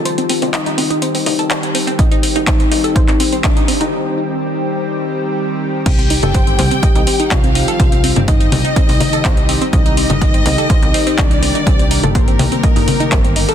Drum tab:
CC |----------------|----------------|----------------|x---------------|
HH |xxoxxxoxxooxxxox|xxoxxxoxxxoxxxox|----------------|xxoxxxoxxxoxxxox|
CP |----x-------x---|----x----x--x---|----------------|------------x---|
CG |---O--O---O-----|---O--O--------O|----------------|---O--O---------|
BD |----------------|o---o---o---o---|----------------|o---o---o---o---|

CC |----------------|----------------|----------------|
HH |xxoxxxoxxooxxxox|xxoxxxoxxxoxxxox|xxoxxxoxxooxxxox|
CP |------------x---|------------x---|------------x---|
CG |---O--O---O-----|---O--O---------|---O--O---O-----|
BD |o---o---o---o---|o---o---o---o---|o---o---o---o---|